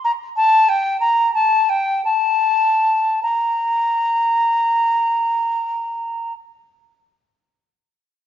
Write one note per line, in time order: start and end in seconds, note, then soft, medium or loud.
0.04 0.11 A#5 medium
0.36 0.70 A5 medium
0.69 0.99 G5 medium
1.00 1.33 A#5 medium
1.34 1.71 A5 medium
1.69 2.04 G5 medium
2.04 3.19 A5 medium
3.22 6.33 A#5 medium